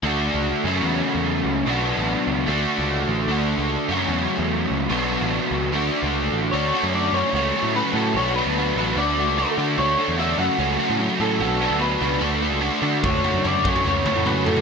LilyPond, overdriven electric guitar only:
\new Staff \with { instrumentName = "Overdriven electric guitar" } { \time 4/4 \key d \major \tempo 4 = 148 <d a d' fis'>4. <fis, cis fis a cis' fis'>2~ <fis, cis fis a cis' fis'>8 | <b, fis b d' fis'>2 <d a d' fis'>2 | <d a d' fis'>4. <fis, cis fis a cis' fis'>2~ <fis, cis fis a cis' fis'>8 | <b, fis b d' fis'>2 <d a d' fis'>2 |
<d a d' fis'>8 <d a d' fis'>8 <d a d' fis'>8 <fis, cis fis a cis' fis'>8 <fis, cis fis a cis' fis'>8 <fis, cis fis a cis' fis'>8 <fis, cis fis a cis' fis'>8 <fis, cis fis a cis' fis'>8 | <b, fis b d' fis'>8 <b, fis b d' fis'>8 <b, fis b d' fis'>8 <b, fis b d' fis'>8 <d a d' fis'>8 <d a d' fis'>8 <d a d' fis'>8 <d a d' fis'>8 | <d a d' fis'>8 <d a d' fis'>8 <d a d' fis'>8 <fis, cis fis a cis' fis'>8 <fis, cis fis a cis' fis'>8 <fis, cis fis a cis' fis'>8 <fis, cis fis a cis' fis'>8 <fis, cis fis a cis' fis'>8 | <b, fis b d' fis'>8 <b, fis b d' fis'>8 <b, fis b d' fis'>8 <b, fis b d' fis'>8 <d a d' fis'>8 <d a d' fis'>8 <d a d' fis'>8 <d a d' fis'>8 |
<d a d' fis'>8 <d a d' fis'>8 <d a d' fis'>8 <fis, cis fis a cis' fis'>8 <fis, cis fis a cis' fis'>8 <fis, cis fis a cis' fis'>8 <fis, cis fis a cis' fis'>8 <fis, cis fis a cis' fis'>8 | }